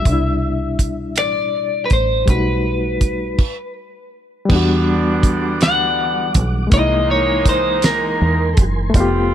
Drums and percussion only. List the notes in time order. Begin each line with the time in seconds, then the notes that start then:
0.05 kick, closed hi-hat
0.79 kick, closed hi-hat
1.16 finger snap, closed hi-hat
1.90 kick, closed hi-hat
2.28 kick, closed hi-hat
3.01 kick, closed hi-hat
3.38 kick, crash
4.50 kick, crash
5.23 kick, closed hi-hat
5.61 snare, closed hi-hat
6.34 kick, closed hi-hat
6.72 kick, closed hi-hat
7.45 kick, closed hi-hat
7.82 snare, closed hi-hat
8.57 kick, closed hi-hat
8.94 kick, closed hi-hat